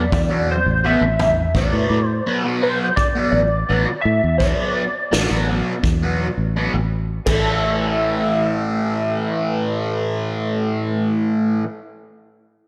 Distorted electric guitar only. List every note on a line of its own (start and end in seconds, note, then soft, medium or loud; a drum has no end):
0.30 0.54 B2 medium
0.30 0.54 F#3 medium
0.30 0.53 B3 medium
0.84 1.02 B2 medium
0.84 1.02 F#3 medium
0.84 1.01 B3 medium
1.02 muted distorted electric guitar stroke soft
1.55 1.73 B2 medium
1.55 1.72 F#3 medium
1.55 1.71 B3 medium
1.73 1.97 B2 medium
1.73 1.97 F#3 medium
1.73 1.96 B3 medium
2.26 2.44 B2 medium
2.26 2.43 F#3 medium
2.26 2.43 B3 loud
2.44 2.61 B2 medium
2.44 2.61 F#3 medium
2.44 2.62 B3 medium
2.62 2.85 B2 medium
2.62 2.86 F#3 medium
2.62 2.86 B3 medium
3.15 3.39 B2 medium
3.15 3.39 F#3 medium
3.15 3.39 B3 medium
3.69 3.87 B2 medium
3.69 3.86 F#3 medium
3.69 3.86 B3 medium
3.87 muted distorted electric guitar stroke soft
4.40 4.58 B2 medium
4.40 4.57 F#3 medium
4.40 4.57 B3 medium
4.58 4.82 B2 medium
4.58 4.82 F#3 medium
4.58 4.82 B3 medium
5.12 5.30 B2 medium
5.12 5.30 F#3 medium
5.12 5.30 B3 medium
5.31 5.48 B2 medium
5.31 5.49 F#3 medium
5.31 5.49 B3 medium
5.49 5.72 B2 medium
5.49 5.72 F#3 medium
5.49 5.73 B3 medium
6.02 6.26 B2 medium
6.02 6.26 F#3 medium
6.02 6.25 B3 medium
6.56 6.74 B2 medium
6.56 6.73 F#3 medium
6.56 6.73 B3 medium
6.74 muted distorted electric guitar stroke soft
7.26 11.63 A2 medium
7.26 11.64 E3 medium
7.26 11.65 A3 medium